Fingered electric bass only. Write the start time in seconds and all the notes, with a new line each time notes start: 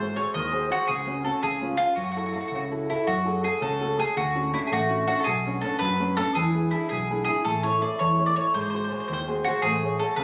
Already playing: G#1
0.35 D#2
0.89 C#2
1.43 C#2
1.97 F#2
2.52 C#2
3.08 F#2
3.62 C#2
4.17 D2
4.72 A1
5.27 B1
5.81 F#2
6.37 E2
6.92 B1
7.46 A1
8.01 E2
8.55 G#1
9.09 D#2
9.63 A1
10.17 C#2